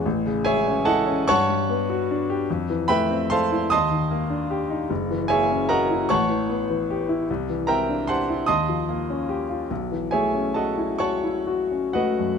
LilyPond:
\new Staff \with { instrumentName = "Grand piano" } { \time 6/8 \key b \mixolydian \tempo 4. = 50 << { r8 <gis' cis'' e'' gis''>8 <a' dis'' fis'' a''>8 <cis'' fis'' a'' cis'''>4. | r8 <b' e'' g'' b''>8 <c'' f'' a'' c'''>8 <dis'' a'' c''' dis'''>4. | r8 <gis' cis'' e'' gis''>8 <ais' dis'' fis'' ais''>8 <cis'' fis'' a'' cis'''>4. | r8 <bes' e'' g'' bes''>8 <c'' fis'' a'' c'''>8 <dis'' a'' c''' dis'''>4. |
r8 <gis' cis'' e'' gis''>8 <a' dis'' fis'' a''>8 <cis'' fis'' a'' cis'''>4 <fis' b' dis'' fis''>8 | } \\ { a,,16 cis16 gis16 cis'16 e'16 cis'16 g,16 g16 b16 fis'16 d'16 g'16 | f,16 e16 a16 c'16 a'16 e'16 dis,16 dis16 ais16 d'16 g'16 dis'16 | fis,,16 e16 ais16 cis'16 fis'16 e'16 a,,16 e16 b16 e16 g'16 e'16 | c,16 e16 c'16 d'16 g'16 e'16 dis,16 eis16 ais16 cis'16 g'16 eis'16 |
b,,16 e16 a16 cis'16 fis'16 e'16 fis'16 e'16 fis'16 cis'16 a16 fis,16 | } >> }